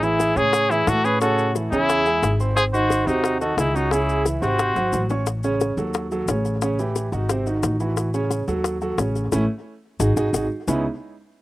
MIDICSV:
0, 0, Header, 1, 6, 480
1, 0, Start_track
1, 0, Tempo, 338028
1, 1727, Time_signature, 4, 2, 24, 8
1, 16215, End_track
2, 0, Start_track
2, 0, Title_t, "Flugelhorn"
2, 0, Program_c, 0, 56
2, 40, Note_on_c, 0, 68, 77
2, 518, Note_on_c, 0, 73, 87
2, 540, Note_off_c, 0, 68, 0
2, 1005, Note_on_c, 0, 68, 76
2, 1026, Note_off_c, 0, 73, 0
2, 1238, Note_on_c, 0, 69, 78
2, 1259, Note_off_c, 0, 68, 0
2, 1481, Note_on_c, 0, 71, 90
2, 1502, Note_off_c, 0, 69, 0
2, 1711, Note_off_c, 0, 71, 0
2, 1719, Note_on_c, 0, 69, 84
2, 2169, Note_off_c, 0, 69, 0
2, 2441, Note_on_c, 0, 68, 87
2, 3347, Note_off_c, 0, 68, 0
2, 3627, Note_on_c, 0, 72, 86
2, 3739, Note_off_c, 0, 72, 0
2, 3868, Note_on_c, 0, 72, 77
2, 4347, Note_on_c, 0, 66, 77
2, 4368, Note_off_c, 0, 72, 0
2, 4826, Note_off_c, 0, 66, 0
2, 4834, Note_on_c, 0, 69, 74
2, 5062, Note_off_c, 0, 69, 0
2, 5075, Note_on_c, 0, 68, 63
2, 5315, Note_on_c, 0, 66, 72
2, 5336, Note_off_c, 0, 68, 0
2, 5551, Note_on_c, 0, 68, 82
2, 5573, Note_off_c, 0, 66, 0
2, 6037, Note_off_c, 0, 68, 0
2, 6276, Note_on_c, 0, 72, 80
2, 7182, Note_off_c, 0, 72, 0
2, 16215, End_track
3, 0, Start_track
3, 0, Title_t, "Trumpet"
3, 0, Program_c, 1, 56
3, 56, Note_on_c, 1, 64, 105
3, 531, Note_on_c, 1, 68, 123
3, 553, Note_off_c, 1, 64, 0
3, 1003, Note_on_c, 1, 64, 102
3, 1024, Note_off_c, 1, 68, 0
3, 1260, Note_on_c, 1, 66, 111
3, 1282, Note_off_c, 1, 64, 0
3, 1489, Note_on_c, 1, 68, 97
3, 1510, Note_off_c, 1, 66, 0
3, 1720, Note_off_c, 1, 68, 0
3, 1728, Note_on_c, 1, 66, 98
3, 2174, Note_off_c, 1, 66, 0
3, 2435, Note_on_c, 1, 64, 115
3, 3343, Note_off_c, 1, 64, 0
3, 3645, Note_on_c, 1, 68, 107
3, 3753, Note_off_c, 1, 68, 0
3, 3889, Note_on_c, 1, 66, 99
3, 4365, Note_on_c, 1, 63, 94
3, 4387, Note_off_c, 1, 66, 0
3, 4832, Note_off_c, 1, 63, 0
3, 4840, Note_on_c, 1, 66, 81
3, 5065, Note_off_c, 1, 66, 0
3, 5091, Note_on_c, 1, 64, 91
3, 5332, Note_on_c, 1, 63, 78
3, 5353, Note_off_c, 1, 64, 0
3, 5567, Note_on_c, 1, 64, 89
3, 5588, Note_off_c, 1, 63, 0
3, 6045, Note_off_c, 1, 64, 0
3, 6288, Note_on_c, 1, 66, 98
3, 7188, Note_off_c, 1, 66, 0
3, 16215, End_track
4, 0, Start_track
4, 0, Title_t, "Grand piano"
4, 0, Program_c, 2, 0
4, 39, Note_on_c, 2, 52, 76
4, 47, Note_on_c, 2, 64, 79
4, 48, Note_on_c, 2, 76, 70
4, 436, Note_off_c, 2, 52, 0
4, 440, Note_off_c, 2, 64, 0
4, 441, Note_off_c, 2, 76, 0
4, 521, Note_on_c, 2, 49, 84
4, 528, Note_on_c, 2, 61, 81
4, 532, Note_on_c, 2, 73, 88
4, 917, Note_off_c, 2, 49, 0
4, 921, Note_off_c, 2, 61, 0
4, 923, Note_off_c, 2, 73, 0
4, 1006, Note_on_c, 2, 52, 76
4, 1013, Note_on_c, 2, 64, 78
4, 1014, Note_on_c, 2, 76, 74
4, 1400, Note_off_c, 2, 52, 0
4, 1404, Note_off_c, 2, 64, 0
4, 1405, Note_off_c, 2, 76, 0
4, 1486, Note_on_c, 2, 61, 71
4, 1493, Note_on_c, 2, 73, 70
4, 1500, Note_on_c, 2, 85, 75
4, 1683, Note_off_c, 2, 61, 0
4, 1687, Note_off_c, 2, 73, 0
4, 1691, Note_off_c, 2, 85, 0
4, 1730, Note_on_c, 2, 49, 77
4, 1734, Note_on_c, 2, 61, 82
4, 1741, Note_on_c, 2, 73, 87
4, 2122, Note_off_c, 2, 49, 0
4, 2125, Note_off_c, 2, 61, 0
4, 2129, Note_off_c, 2, 73, 0
4, 2212, Note_on_c, 2, 52, 61
4, 2214, Note_on_c, 2, 64, 61
4, 2221, Note_on_c, 2, 76, 56
4, 2407, Note_off_c, 2, 52, 0
4, 2408, Note_off_c, 2, 64, 0
4, 2412, Note_off_c, 2, 76, 0
4, 2451, Note_on_c, 2, 49, 88
4, 2455, Note_on_c, 2, 61, 87
4, 2459, Note_on_c, 2, 73, 87
4, 2843, Note_off_c, 2, 49, 0
4, 2845, Note_off_c, 2, 61, 0
4, 2847, Note_off_c, 2, 73, 0
4, 2926, Note_on_c, 2, 56, 75
4, 2931, Note_on_c, 2, 68, 80
4, 2934, Note_on_c, 2, 80, 79
4, 3320, Note_off_c, 2, 56, 0
4, 3322, Note_off_c, 2, 68, 0
4, 3325, Note_off_c, 2, 80, 0
4, 3408, Note_on_c, 2, 60, 68
4, 3413, Note_on_c, 2, 72, 71
4, 3414, Note_on_c, 2, 84, 74
4, 3800, Note_off_c, 2, 60, 0
4, 3803, Note_off_c, 2, 72, 0
4, 3804, Note_off_c, 2, 84, 0
4, 3893, Note_on_c, 2, 51, 73
4, 3895, Note_on_c, 2, 63, 75
4, 3899, Note_on_c, 2, 75, 73
4, 4283, Note_off_c, 2, 51, 0
4, 4284, Note_off_c, 2, 63, 0
4, 4287, Note_off_c, 2, 75, 0
4, 4368, Note_on_c, 2, 48, 86
4, 4372, Note_on_c, 2, 60, 90
4, 4375, Note_on_c, 2, 72, 86
4, 4760, Note_off_c, 2, 48, 0
4, 4762, Note_off_c, 2, 60, 0
4, 4765, Note_off_c, 2, 72, 0
4, 4851, Note_on_c, 2, 51, 79
4, 4851, Note_on_c, 2, 63, 83
4, 4857, Note_on_c, 2, 75, 79
4, 5242, Note_off_c, 2, 51, 0
4, 5242, Note_off_c, 2, 63, 0
4, 5245, Note_off_c, 2, 75, 0
4, 5325, Note_on_c, 2, 61, 79
4, 5330, Note_on_c, 2, 73, 70
4, 5337, Note_on_c, 2, 85, 78
4, 5521, Note_off_c, 2, 61, 0
4, 5524, Note_off_c, 2, 73, 0
4, 5528, Note_off_c, 2, 85, 0
4, 5574, Note_on_c, 2, 49, 84
4, 5579, Note_on_c, 2, 61, 80
4, 5579, Note_on_c, 2, 73, 87
4, 5963, Note_off_c, 2, 49, 0
4, 5966, Note_off_c, 2, 61, 0
4, 5966, Note_off_c, 2, 73, 0
4, 6039, Note_on_c, 2, 52, 60
4, 6046, Note_on_c, 2, 64, 66
4, 6049, Note_on_c, 2, 76, 61
4, 6237, Note_off_c, 2, 52, 0
4, 6242, Note_off_c, 2, 64, 0
4, 6243, Note_off_c, 2, 76, 0
4, 6287, Note_on_c, 2, 48, 82
4, 6293, Note_on_c, 2, 60, 93
4, 6296, Note_on_c, 2, 72, 91
4, 6679, Note_off_c, 2, 48, 0
4, 6682, Note_off_c, 2, 60, 0
4, 6684, Note_off_c, 2, 72, 0
4, 6761, Note_on_c, 2, 54, 79
4, 6768, Note_on_c, 2, 66, 72
4, 6770, Note_on_c, 2, 78, 70
4, 7155, Note_off_c, 2, 54, 0
4, 7159, Note_off_c, 2, 66, 0
4, 7160, Note_off_c, 2, 78, 0
4, 7244, Note_on_c, 2, 61, 68
4, 7248, Note_on_c, 2, 73, 72
4, 7252, Note_on_c, 2, 85, 74
4, 7440, Note_off_c, 2, 61, 0
4, 7442, Note_off_c, 2, 73, 0
4, 7445, Note_off_c, 2, 85, 0
4, 7725, Note_on_c, 2, 49, 81
4, 7728, Note_on_c, 2, 61, 87
4, 7735, Note_on_c, 2, 73, 81
4, 8117, Note_off_c, 2, 49, 0
4, 8119, Note_off_c, 2, 61, 0
4, 8123, Note_off_c, 2, 73, 0
4, 8205, Note_on_c, 2, 54, 74
4, 8209, Note_on_c, 2, 66, 76
4, 8213, Note_on_c, 2, 69, 71
4, 8597, Note_off_c, 2, 54, 0
4, 8599, Note_off_c, 2, 66, 0
4, 8601, Note_off_c, 2, 69, 0
4, 8687, Note_on_c, 2, 54, 78
4, 8690, Note_on_c, 2, 66, 68
4, 8695, Note_on_c, 2, 69, 81
4, 8881, Note_off_c, 2, 54, 0
4, 8883, Note_off_c, 2, 66, 0
4, 8886, Note_off_c, 2, 69, 0
4, 8922, Note_on_c, 2, 49, 67
4, 8928, Note_on_c, 2, 61, 66
4, 8932, Note_on_c, 2, 73, 70
4, 9315, Note_off_c, 2, 49, 0
4, 9318, Note_off_c, 2, 61, 0
4, 9320, Note_off_c, 2, 73, 0
4, 9402, Note_on_c, 2, 49, 82
4, 9410, Note_on_c, 2, 61, 83
4, 9411, Note_on_c, 2, 73, 78
4, 9598, Note_off_c, 2, 49, 0
4, 9603, Note_off_c, 2, 61, 0
4, 9603, Note_off_c, 2, 73, 0
4, 9644, Note_on_c, 2, 52, 75
4, 9649, Note_on_c, 2, 64, 74
4, 9651, Note_on_c, 2, 67, 75
4, 10036, Note_off_c, 2, 52, 0
4, 10039, Note_off_c, 2, 64, 0
4, 10040, Note_off_c, 2, 67, 0
4, 10119, Note_on_c, 2, 51, 76
4, 10124, Note_on_c, 2, 63, 78
4, 10128, Note_on_c, 2, 66, 79
4, 10316, Note_off_c, 2, 51, 0
4, 10319, Note_off_c, 2, 63, 0
4, 10322, Note_off_c, 2, 66, 0
4, 10364, Note_on_c, 2, 48, 79
4, 10368, Note_on_c, 2, 60, 77
4, 10372, Note_on_c, 2, 72, 82
4, 10559, Note_off_c, 2, 48, 0
4, 10562, Note_off_c, 2, 60, 0
4, 10564, Note_off_c, 2, 72, 0
4, 10602, Note_on_c, 2, 51, 81
4, 10603, Note_on_c, 2, 63, 71
4, 10613, Note_on_c, 2, 66, 70
4, 10995, Note_off_c, 2, 51, 0
4, 10995, Note_off_c, 2, 63, 0
4, 11001, Note_off_c, 2, 66, 0
4, 11080, Note_on_c, 2, 52, 72
4, 11082, Note_on_c, 2, 64, 71
4, 11086, Note_on_c, 2, 66, 68
4, 11474, Note_off_c, 2, 52, 0
4, 11475, Note_off_c, 2, 64, 0
4, 11477, Note_off_c, 2, 66, 0
4, 11558, Note_on_c, 2, 49, 83
4, 11561, Note_on_c, 2, 61, 79
4, 11566, Note_on_c, 2, 73, 80
4, 11953, Note_off_c, 2, 49, 0
4, 11955, Note_off_c, 2, 61, 0
4, 11957, Note_off_c, 2, 73, 0
4, 12038, Note_on_c, 2, 54, 82
4, 12040, Note_on_c, 2, 66, 81
4, 12047, Note_on_c, 2, 69, 77
4, 12433, Note_off_c, 2, 54, 0
4, 12434, Note_off_c, 2, 66, 0
4, 12438, Note_off_c, 2, 69, 0
4, 12518, Note_on_c, 2, 54, 72
4, 12522, Note_on_c, 2, 66, 82
4, 12528, Note_on_c, 2, 69, 74
4, 12717, Note_off_c, 2, 54, 0
4, 12718, Note_off_c, 2, 66, 0
4, 12722, Note_off_c, 2, 69, 0
4, 12762, Note_on_c, 2, 49, 70
4, 12765, Note_on_c, 2, 61, 69
4, 12769, Note_on_c, 2, 73, 66
4, 13156, Note_off_c, 2, 49, 0
4, 13158, Note_off_c, 2, 61, 0
4, 13160, Note_off_c, 2, 73, 0
4, 13242, Note_on_c, 2, 64, 97
4, 13243, Note_on_c, 2, 57, 98
4, 13244, Note_on_c, 2, 61, 99
4, 13396, Note_off_c, 2, 64, 0
4, 13397, Note_off_c, 2, 57, 0
4, 13397, Note_off_c, 2, 61, 0
4, 14196, Note_on_c, 2, 63, 96
4, 14197, Note_on_c, 2, 68, 94
4, 14199, Note_on_c, 2, 66, 88
4, 14353, Note_off_c, 2, 63, 0
4, 14354, Note_off_c, 2, 68, 0
4, 14355, Note_off_c, 2, 66, 0
4, 14439, Note_on_c, 2, 66, 94
4, 14439, Note_on_c, 2, 68, 102
4, 14440, Note_on_c, 2, 63, 97
4, 14595, Note_off_c, 2, 66, 0
4, 14595, Note_off_c, 2, 68, 0
4, 14596, Note_off_c, 2, 63, 0
4, 14679, Note_on_c, 2, 66, 78
4, 14681, Note_on_c, 2, 63, 86
4, 14684, Note_on_c, 2, 68, 81
4, 14835, Note_off_c, 2, 66, 0
4, 14837, Note_off_c, 2, 63, 0
4, 14838, Note_off_c, 2, 68, 0
4, 15162, Note_on_c, 2, 49, 89
4, 15166, Note_on_c, 2, 56, 86
4, 15168, Note_on_c, 2, 59, 80
4, 15171, Note_on_c, 2, 61, 81
4, 15174, Note_on_c, 2, 63, 78
4, 15178, Note_on_c, 2, 64, 95
4, 15388, Note_off_c, 2, 49, 0
4, 15390, Note_off_c, 2, 56, 0
4, 15391, Note_off_c, 2, 59, 0
4, 15393, Note_off_c, 2, 61, 0
4, 15394, Note_off_c, 2, 63, 0
4, 15396, Note_off_c, 2, 64, 0
4, 16215, End_track
5, 0, Start_track
5, 0, Title_t, "Upright bass"
5, 0, Program_c, 3, 32
5, 0, Note_on_c, 3, 33, 88
5, 436, Note_off_c, 3, 33, 0
5, 512, Note_on_c, 3, 45, 88
5, 1188, Note_off_c, 3, 45, 0
5, 1237, Note_on_c, 3, 45, 94
5, 2361, Note_off_c, 3, 45, 0
5, 2440, Note_on_c, 3, 40, 89
5, 3112, Note_off_c, 3, 40, 0
5, 3159, Note_on_c, 3, 32, 83
5, 4281, Note_off_c, 3, 32, 0
5, 4359, Note_on_c, 3, 39, 94
5, 5031, Note_off_c, 3, 39, 0
5, 5073, Note_on_c, 3, 37, 88
5, 6197, Note_off_c, 3, 37, 0
5, 6277, Note_on_c, 3, 32, 87
5, 6726, Note_off_c, 3, 32, 0
5, 6755, Note_on_c, 3, 32, 67
5, 6981, Note_off_c, 3, 32, 0
5, 6996, Note_on_c, 3, 33, 86
5, 8117, Note_off_c, 3, 33, 0
5, 8196, Note_on_c, 3, 39, 89
5, 8867, Note_off_c, 3, 39, 0
5, 8918, Note_on_c, 3, 33, 95
5, 10038, Note_off_c, 3, 33, 0
5, 10112, Note_on_c, 3, 32, 89
5, 10786, Note_off_c, 3, 32, 0
5, 10831, Note_on_c, 3, 33, 91
5, 11955, Note_off_c, 3, 33, 0
5, 12036, Note_on_c, 3, 39, 87
5, 12709, Note_off_c, 3, 39, 0
5, 12751, Note_on_c, 3, 33, 88
5, 13203, Note_off_c, 3, 33, 0
5, 13236, Note_on_c, 3, 33, 97
5, 13418, Note_off_c, 3, 33, 0
5, 14194, Note_on_c, 3, 32, 99
5, 14378, Note_off_c, 3, 32, 0
5, 14433, Note_on_c, 3, 32, 84
5, 14617, Note_off_c, 3, 32, 0
5, 14668, Note_on_c, 3, 32, 87
5, 14855, Note_off_c, 3, 32, 0
5, 15158, Note_on_c, 3, 37, 92
5, 15386, Note_off_c, 3, 37, 0
5, 16215, End_track
6, 0, Start_track
6, 0, Title_t, "Drums"
6, 40, Note_on_c, 9, 60, 32
6, 40, Note_on_c, 9, 70, 32
6, 182, Note_off_c, 9, 60, 0
6, 182, Note_off_c, 9, 70, 0
6, 281, Note_on_c, 9, 60, 62
6, 281, Note_on_c, 9, 70, 67
6, 423, Note_off_c, 9, 60, 0
6, 423, Note_off_c, 9, 70, 0
6, 518, Note_on_c, 9, 70, 27
6, 660, Note_off_c, 9, 70, 0
6, 754, Note_on_c, 9, 60, 75
6, 761, Note_on_c, 9, 70, 70
6, 896, Note_off_c, 9, 60, 0
6, 903, Note_off_c, 9, 70, 0
6, 997, Note_on_c, 9, 60, 30
6, 1010, Note_on_c, 9, 70, 28
6, 1139, Note_off_c, 9, 60, 0
6, 1152, Note_off_c, 9, 70, 0
6, 1241, Note_on_c, 9, 60, 73
6, 1241, Note_on_c, 9, 61, 84
6, 1244, Note_on_c, 9, 70, 66
6, 1383, Note_off_c, 9, 60, 0
6, 1383, Note_off_c, 9, 61, 0
6, 1386, Note_off_c, 9, 70, 0
6, 1484, Note_on_c, 9, 60, 34
6, 1485, Note_on_c, 9, 70, 28
6, 1626, Note_off_c, 9, 60, 0
6, 1627, Note_off_c, 9, 70, 0
6, 1718, Note_on_c, 9, 70, 66
6, 1728, Note_on_c, 9, 60, 69
6, 1860, Note_off_c, 9, 70, 0
6, 1870, Note_off_c, 9, 60, 0
6, 1962, Note_on_c, 9, 70, 30
6, 2104, Note_off_c, 9, 70, 0
6, 2206, Note_on_c, 9, 60, 60
6, 2209, Note_on_c, 9, 70, 74
6, 2348, Note_off_c, 9, 60, 0
6, 2351, Note_off_c, 9, 70, 0
6, 2451, Note_on_c, 9, 60, 37
6, 2452, Note_on_c, 9, 70, 27
6, 2593, Note_off_c, 9, 60, 0
6, 2594, Note_off_c, 9, 70, 0
6, 2689, Note_on_c, 9, 70, 71
6, 2693, Note_on_c, 9, 60, 73
6, 2831, Note_off_c, 9, 70, 0
6, 2835, Note_off_c, 9, 60, 0
6, 2923, Note_on_c, 9, 70, 28
6, 2934, Note_on_c, 9, 60, 33
6, 3065, Note_off_c, 9, 70, 0
6, 3076, Note_off_c, 9, 60, 0
6, 3166, Note_on_c, 9, 70, 71
6, 3172, Note_on_c, 9, 60, 71
6, 3172, Note_on_c, 9, 61, 84
6, 3308, Note_off_c, 9, 70, 0
6, 3314, Note_off_c, 9, 60, 0
6, 3314, Note_off_c, 9, 61, 0
6, 3409, Note_on_c, 9, 70, 29
6, 3416, Note_on_c, 9, 60, 35
6, 3551, Note_off_c, 9, 70, 0
6, 3558, Note_off_c, 9, 60, 0
6, 3647, Note_on_c, 9, 60, 64
6, 3651, Note_on_c, 9, 70, 68
6, 3789, Note_off_c, 9, 60, 0
6, 3793, Note_off_c, 9, 70, 0
6, 3891, Note_on_c, 9, 60, 34
6, 3893, Note_on_c, 9, 70, 31
6, 4033, Note_off_c, 9, 60, 0
6, 4035, Note_off_c, 9, 70, 0
6, 4120, Note_on_c, 9, 60, 63
6, 4135, Note_on_c, 9, 70, 68
6, 4262, Note_off_c, 9, 60, 0
6, 4277, Note_off_c, 9, 70, 0
6, 4372, Note_on_c, 9, 70, 28
6, 4514, Note_off_c, 9, 70, 0
6, 4598, Note_on_c, 9, 60, 74
6, 4611, Note_on_c, 9, 70, 62
6, 4740, Note_off_c, 9, 60, 0
6, 4753, Note_off_c, 9, 70, 0
6, 4845, Note_on_c, 9, 60, 32
6, 4848, Note_on_c, 9, 70, 28
6, 4987, Note_off_c, 9, 60, 0
6, 4990, Note_off_c, 9, 70, 0
6, 5082, Note_on_c, 9, 60, 73
6, 5082, Note_on_c, 9, 61, 88
6, 5088, Note_on_c, 9, 70, 74
6, 5224, Note_off_c, 9, 60, 0
6, 5224, Note_off_c, 9, 61, 0
6, 5230, Note_off_c, 9, 70, 0
6, 5315, Note_on_c, 9, 60, 31
6, 5337, Note_on_c, 9, 70, 28
6, 5457, Note_off_c, 9, 60, 0
6, 5479, Note_off_c, 9, 70, 0
6, 5557, Note_on_c, 9, 60, 68
6, 5576, Note_on_c, 9, 70, 71
6, 5699, Note_off_c, 9, 60, 0
6, 5718, Note_off_c, 9, 70, 0
6, 5810, Note_on_c, 9, 70, 32
6, 5952, Note_off_c, 9, 70, 0
6, 6042, Note_on_c, 9, 60, 60
6, 6048, Note_on_c, 9, 70, 73
6, 6184, Note_off_c, 9, 60, 0
6, 6190, Note_off_c, 9, 70, 0
6, 6282, Note_on_c, 9, 60, 36
6, 6284, Note_on_c, 9, 70, 25
6, 6424, Note_off_c, 9, 60, 0
6, 6426, Note_off_c, 9, 70, 0
6, 6516, Note_on_c, 9, 70, 69
6, 6524, Note_on_c, 9, 60, 73
6, 6658, Note_off_c, 9, 70, 0
6, 6666, Note_off_c, 9, 60, 0
6, 6758, Note_on_c, 9, 70, 26
6, 6764, Note_on_c, 9, 60, 74
6, 6900, Note_off_c, 9, 70, 0
6, 6906, Note_off_c, 9, 60, 0
6, 6995, Note_on_c, 9, 70, 71
6, 7006, Note_on_c, 9, 61, 81
6, 7137, Note_off_c, 9, 70, 0
6, 7148, Note_off_c, 9, 61, 0
6, 7236, Note_on_c, 9, 70, 31
6, 7251, Note_on_c, 9, 61, 85
6, 7378, Note_off_c, 9, 70, 0
6, 7393, Note_off_c, 9, 61, 0
6, 7475, Note_on_c, 9, 70, 64
6, 7483, Note_on_c, 9, 60, 67
6, 7617, Note_off_c, 9, 70, 0
6, 7625, Note_off_c, 9, 60, 0
6, 7714, Note_on_c, 9, 70, 32
6, 7731, Note_on_c, 9, 60, 34
6, 7856, Note_off_c, 9, 70, 0
6, 7873, Note_off_c, 9, 60, 0
6, 7959, Note_on_c, 9, 70, 69
6, 7971, Note_on_c, 9, 60, 64
6, 8101, Note_off_c, 9, 70, 0
6, 8113, Note_off_c, 9, 60, 0
6, 8199, Note_on_c, 9, 70, 27
6, 8341, Note_off_c, 9, 70, 0
6, 8432, Note_on_c, 9, 70, 65
6, 8448, Note_on_c, 9, 60, 72
6, 8574, Note_off_c, 9, 70, 0
6, 8590, Note_off_c, 9, 60, 0
6, 8681, Note_on_c, 9, 70, 28
6, 8688, Note_on_c, 9, 60, 31
6, 8823, Note_off_c, 9, 70, 0
6, 8830, Note_off_c, 9, 60, 0
6, 8916, Note_on_c, 9, 70, 69
6, 8927, Note_on_c, 9, 60, 65
6, 8927, Note_on_c, 9, 61, 85
6, 9058, Note_off_c, 9, 70, 0
6, 9069, Note_off_c, 9, 60, 0
6, 9069, Note_off_c, 9, 61, 0
6, 9160, Note_on_c, 9, 70, 27
6, 9163, Note_on_c, 9, 60, 35
6, 9302, Note_off_c, 9, 70, 0
6, 9305, Note_off_c, 9, 60, 0
6, 9393, Note_on_c, 9, 70, 65
6, 9403, Note_on_c, 9, 60, 67
6, 9535, Note_off_c, 9, 70, 0
6, 9545, Note_off_c, 9, 60, 0
6, 9641, Note_on_c, 9, 70, 30
6, 9783, Note_off_c, 9, 70, 0
6, 9878, Note_on_c, 9, 70, 66
6, 9880, Note_on_c, 9, 60, 67
6, 10020, Note_off_c, 9, 70, 0
6, 10022, Note_off_c, 9, 60, 0
6, 10116, Note_on_c, 9, 60, 36
6, 10118, Note_on_c, 9, 70, 28
6, 10258, Note_off_c, 9, 60, 0
6, 10260, Note_off_c, 9, 70, 0
6, 10358, Note_on_c, 9, 60, 75
6, 10358, Note_on_c, 9, 70, 65
6, 10500, Note_off_c, 9, 60, 0
6, 10500, Note_off_c, 9, 70, 0
6, 10599, Note_on_c, 9, 70, 27
6, 10604, Note_on_c, 9, 60, 32
6, 10741, Note_off_c, 9, 70, 0
6, 10746, Note_off_c, 9, 60, 0
6, 10835, Note_on_c, 9, 70, 70
6, 10840, Note_on_c, 9, 60, 71
6, 10840, Note_on_c, 9, 61, 80
6, 10977, Note_off_c, 9, 70, 0
6, 10982, Note_off_c, 9, 60, 0
6, 10982, Note_off_c, 9, 61, 0
6, 11076, Note_on_c, 9, 70, 32
6, 11080, Note_on_c, 9, 60, 34
6, 11218, Note_off_c, 9, 70, 0
6, 11222, Note_off_c, 9, 60, 0
6, 11314, Note_on_c, 9, 70, 69
6, 11321, Note_on_c, 9, 60, 64
6, 11456, Note_off_c, 9, 70, 0
6, 11463, Note_off_c, 9, 60, 0
6, 11558, Note_on_c, 9, 70, 30
6, 11564, Note_on_c, 9, 60, 33
6, 11700, Note_off_c, 9, 70, 0
6, 11706, Note_off_c, 9, 60, 0
6, 11794, Note_on_c, 9, 60, 63
6, 11798, Note_on_c, 9, 70, 67
6, 11936, Note_off_c, 9, 60, 0
6, 11940, Note_off_c, 9, 70, 0
6, 12041, Note_on_c, 9, 70, 28
6, 12183, Note_off_c, 9, 70, 0
6, 12273, Note_on_c, 9, 60, 74
6, 12280, Note_on_c, 9, 70, 68
6, 12415, Note_off_c, 9, 60, 0
6, 12422, Note_off_c, 9, 70, 0
6, 12514, Note_on_c, 9, 70, 26
6, 12520, Note_on_c, 9, 60, 34
6, 12656, Note_off_c, 9, 70, 0
6, 12662, Note_off_c, 9, 60, 0
6, 12754, Note_on_c, 9, 70, 66
6, 12756, Note_on_c, 9, 60, 71
6, 12756, Note_on_c, 9, 61, 84
6, 12896, Note_off_c, 9, 70, 0
6, 12898, Note_off_c, 9, 60, 0
6, 12898, Note_off_c, 9, 61, 0
6, 13001, Note_on_c, 9, 70, 28
6, 13004, Note_on_c, 9, 60, 35
6, 13143, Note_off_c, 9, 70, 0
6, 13146, Note_off_c, 9, 60, 0
6, 13234, Note_on_c, 9, 70, 96
6, 13237, Note_on_c, 9, 60, 91
6, 13376, Note_off_c, 9, 70, 0
6, 13379, Note_off_c, 9, 60, 0
6, 14198, Note_on_c, 9, 70, 89
6, 14200, Note_on_c, 9, 60, 106
6, 14340, Note_off_c, 9, 70, 0
6, 14342, Note_off_c, 9, 60, 0
6, 14438, Note_on_c, 9, 70, 84
6, 14441, Note_on_c, 9, 60, 83
6, 14580, Note_off_c, 9, 70, 0
6, 14583, Note_off_c, 9, 60, 0
6, 14680, Note_on_c, 9, 70, 100
6, 14686, Note_on_c, 9, 60, 96
6, 14822, Note_off_c, 9, 70, 0
6, 14828, Note_off_c, 9, 60, 0
6, 15164, Note_on_c, 9, 61, 97
6, 15164, Note_on_c, 9, 70, 94
6, 15306, Note_off_c, 9, 61, 0
6, 15306, Note_off_c, 9, 70, 0
6, 16215, End_track
0, 0, End_of_file